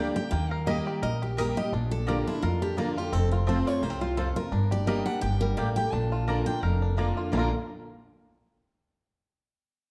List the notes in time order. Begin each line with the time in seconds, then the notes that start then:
Already playing: D3 G3 A#3 G4 A#4 D5
0.00 D4 G4
0.16 D4 G4 G5
0.31 D#2 D#3 A#3 G5
0.49 A#4 F5
0.66 G3 A#3 D#4 G4 D#5 A#5
0.86 G4 D5
1.02 A#1 A#2 A#4 D#5
1.22 G4
1.37 G3 A#3 D#4 G4 A#4 D#5 A#5
1.57 G4 D#5
1.72 A#1 A#2 D4
1.91 A4
2.07 D3 A#3 D4 F4 G4 A#4 D5 A#5
2.27 D4 E4 F4
2.42 F2 F4 A#4
2.62 D4 G4
2.77 D3 A#3 D4 F4 A#4 D5 A#5
2.96 D4 F4 G4
3.12 F1 F2 C4 A4
3.31 F4 A#4
3.47 F3 A3 C4 F4 C5 A5
3.67 F4 C#5
3.82 C2 C3 A#3 C5
3.90 C4
4.01 F4
4.17 F2 C4 F4 A4 C5 A5
4.36 F4 A#4
4.52 G1 G2 D4
4.71 G4 D5
4.86 G3 A#3 D4 G4 A#4 D5 D#5 G5
5.06 D4 F#5
5.21 G1 G2 G4 G5
5.41 G3 A#4
5.57 A1 A3 A#3 G4 D5 G5
5.76 G4 G5
5.92 A#1 A#2 D4 A5
6.12 F4
6.27 D3 A#3 D4 F4 A#4 D5 A#5
6.46 D4 F4 G5
6.63 F1 F2 A#4 F5
6.82 D4
6.97 D3 A#3 D4 F4 D5 A#5
7.17 F4
7.32 A#1 A#2 D3 A#3 D4 F4 D5 F5 A#5
7.37 F4 A#4